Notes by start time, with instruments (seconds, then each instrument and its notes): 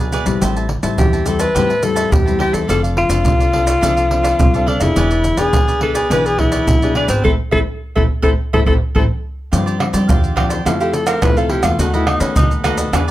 Already playing: upright bass B1, nylon-string guitar B2 B3 D4 G#4, alto saxophone G#4
0.00 cavaquinho G#4 B4 D5, pandeiro, maracas
0.12 cavaquinho E4 G#4 B4 D5, pandeiro, maracas
0.26 upright bass B1, nylon-string guitar G3 C4 E4, cavaquinho G#4 B4 D5, pandeiro, maracas
0.41 upright bass A1, nylon-string guitar A2, cavaquinho G4 C5 E5 A5, pandeiro, maracas, surdo
0.56 cavaquinho C5 E5 A5, pandeiro, maracas
0.69 muted cavaquinho stroke, pandeiro
0.83 upright bass A1, nylon-string guitar G3 C4 E4, cavaquinho C5 E5 A5, pandeiro, maracas
0.98 upright bass E2, nylon-string guitar E3, alto saxophone G4, pandeiro, maracas, surdo
1.13 cavaquinho C5 E5 A5, pandeiro, maracas
1.26 nylon-string guitar G3 C4 E4, cavaquinho G4 C5 E5 A5, alto saxophone A4, pandeiro, maracas
1.39 alto saxophone B4, cavaquinho C5 E5 A5, pandeiro, maracas
1.55 upright bass E2, nylon-string guitar A2 G3 C4 E4, cavaquinho G4 C5 E5 A5, pandeiro, maracas, surdo
1.69 cavaquinho C5 E5 A5, pandeiro, maracas
1.83 nylon-string guitar G3 C4 E4, alto saxophone A4, pandeiro, maracas
1.95 cavaquinho C5 E5 A5, pandeiro, maracas
2.11 upright bass E2, nylon-string guitar E3, alto saxophone G4, muted cavaquinho stroke, pandeiro, maracas, surdo
2.26 nylon-string guitar G3 C4 E4, cavaquinho C5 E5 A5, pandeiro, maracas
2.39 cavaquinho G4 C5 E5 A5, alto saxophone G4, pandeiro
2.52 upright bass E2, alto saxophone A4, cavaquinho C5 E5 A5, pandeiro, maracas
2.68 upright bass F1, nylon-string guitar F3 C4 D4 A4, cavaquinho D4 A4 D5 F5, alto saxophone A4, pandeiro, maracas, surdo
2.83 cavaquinho A4 D5 F5, pandeiro, maracas
2.97 alto saxophone F4, muted cavaquinho stroke, pandeiro
3.09 upright bass F1, nylon-string guitar C4 D4 A4, cavaquinho A4 D5 F5, pandeiro, maracas
3.25 upright bass C2, nylon-string guitar C3, pandeiro, maracas, surdo
3.40 cavaquinho A4 D5 F5, pandeiro, maracas
3.52 nylon-string guitar C4 D4 A4, cavaquinho D4 A4 D5 F5, pandeiro
3.65 cavaquinho A4 D5 F5, pandeiro, maracas
3.81 upright bass C2, nylon-string guitar F3 C4 D4 A4, cavaquinho D4 A4 D5 F5, pandeiro, maracas, surdo
3.97 cavaquinho A4 D5 F5, pandeiro, maracas
4.11 nylon-string guitar C4 D4 A4, pandeiro
4.23 cavaquinho A4 D5 F5, pandeiro, maracas
4.39 upright bass C2, nylon-string guitar C3, muted cavaquinho stroke, pandeiro, maracas, surdo
4.54 nylon-string guitar C4 D4 A4, cavaquinho A4 D5 F5, pandeiro, maracas
4.66 cavaquinho D4 A4 D5 F5, alto saxophone D4, pandeiro
4.80 upright bass F1, nylon-string guitar B3 D4 G#4, alto saxophone E4, cavaquinho A4 D5 F5, pandeiro, maracas
4.96 upright bass E1, nylon-string guitar E3, cavaquinho E4 G#4 B4 D5, pandeiro, maracas, surdo
5.11 cavaquinho G#4 B4 D5, pandeiro, maracas
5.24 muted cavaquinho stroke, pandeiro, maracas
5.37 upright bass E1, nylon-string guitar B3 D4 G#4, alto saxophone G#4, cavaquinho G#4 B4 D5, pandeiro, maracas
5.53 upright bass B1, pandeiro, maracas, surdo
5.67 cavaquinho G#4 B4 D5, pandeiro, maracas
5.81 nylon-string guitar B3 D4 G#4, cavaquinho E4 G#4 B4 D5, alto saxophone A4, pandeiro
5.94 alto saxophone G#4, cavaquinho G#4 B4 D5, pandeiro, maracas
6.10 upright bass B1, nylon-string guitar E3 B3 D4 G#4, cavaquinho E4 G#4 B4 D5, alto saxophone B4, pandeiro, maracas, surdo
6.25 cavaquinho G#4 B4 D5, alto saxophone G#4, pandeiro, maracas
6.39 nylon-string guitar B3 D4 G#4, alto saxophone E4, pandeiro, surdo
6.52 cavaquinho G#4 B4 D5, pandeiro, maracas
6.67 upright bass B1, nylon-string guitar B2, muted cavaquinho stroke, pandeiro, maracas, surdo
6.82 nylon-string guitar B3 D4 G#4, cavaquinho G#4 B4 D5, pandeiro, maracas
6.95 alto saxophone D4, cavaquinho E4 G#4 B4 D5, pandeiro
7.08 upright bass G#1, alto saxophone C4, cavaquinho G#4 B4 D5, pandeiro, maracas
7.24 upright bass A1, nylon-string guitar A3 C4 E4, cavaquinho A4 C5 E5, alto saxophone A4, surdo
7.51 upright bass A1, nylon-string guitar A3 C4 E4, alto saxophone A4, cavaquinho A4 C5 E5, surdo
7.96 upright bass A1, nylon-string guitar A3 C4 E4, alto saxophone A4, cavaquinho A4 C5 E5, surdo
8.22 upright bass A1, nylon-string guitar A3 C4 E4, cavaquinho A4 C5 E5, alto saxophone A4, surdo
8.53 upright bass A1, nylon-string guitar A3 C4 E4, alto saxophone A4, cavaquinho A4 C5 E5, surdo
8.66 upright bass A1, nylon-string guitar A3 C4 E4, alto saxophone A4, cavaquinho A4 C5 E5, surdo
8.95 upright bass A1, nylon-string guitar A3 C4 E4, cavaquinho A4 C5 E5, alto saxophone A4, surdo
9.52 upright bass G2, nylon-string guitar G2 F3 C4 D4, cavaquinho F4 G4 C5 D5, pandeiro, maracas, surdo
9.66 cavaquinho G4 C5 D5, pandeiro, maracas
9.79 nylon-string guitar F3 C4 D4, muted cavaquinho stroke, pandeiro, tamborim
9.93 upright bass G3, cavaquinho G4 C5 D5, pandeiro, maracas
10.09 upright bass E2, nylon-string guitar D3, cavaquinho F4 G4 C5 D5, pandeiro, maracas, surdo
10.24 pandeiro, maracas
10.36 nylon-string guitar F3 C4 D4, cavaquinho F4 G4 C5 D5, pandeiro, tamborim, surdo
10.49 cavaquinho G4 C5 D5, pandeiro, maracas
10.65 upright bass F2, nylon-string guitar F3 A3 C4 E4, cavaquinho E4 A4 C5 F5, pandeiro, tamborim, maracas, surdo
10.80 alto saxophone G4, cavaquinho A4 C5 F5, pandeiro, maracas
10.93 alto saxophone A4, muted cavaquinho stroke, pandeiro, maracas
11.07 cavaquinho A4 C5 F5, alto saxophone A#4, pandeiro, tamborim, maracas
11.22 upright bass F2, nylon-string guitar C3 A3 C4 E4, alto saxophone B4, pandeiro, tamborim, maracas, surdo
11.37 alto saxophone A4, cavaquinho A4 C5 F5, pandeiro, maracas
11.49 cavaquinho E4 A4 C5 F5, alto saxophone G4, pandeiro
11.63 upright bass E2, nylon-string guitar A3 B3 F#4, alto saxophone F4, cavaquinho A4 C5 F5, pandeiro, tamborim, maracas
11.79 upright bass D#2, nylon-string guitar D#3, cavaquinho D#4 A4 B4 D#5, alto saxophone F#4, pandeiro, maracas, surdo
11.93 nylon-string guitar A3 B3 F#4, alto saxophone E4, cavaquinho A4 B4 D#5, pandeiro, maracas
12.07 nylon-string guitar B3 F#4, alto saxophone D#4, muted cavaquinho stroke, pandeiro, tamborim
12.20 upright bass D#3, alto saxophone C#4, cavaquinho A4 B4 D#5, pandeiro, maracas
12.35 upright bass D#2, nylon-string guitar D#3, cavaquinho D#4 A4 B4 D#5, alto saxophone D#4, pandeiro, maracas, surdo
12.51 pandeiro, maracas
12.64 nylon-string guitar A3 B3 F#4, cavaquinho D#4 A4 B4 D#5, pandeiro, tamborim, maracas
12.78 cavaquinho A4 B4 D#5, pandeiro, maracas
12.93 upright bass E2, nylon-string guitar E3 B3 D4 G#4, cavaquinho E4 G#4 B4 D5, pandeiro, tamborim, maracas, surdo
13.08 cavaquinho D5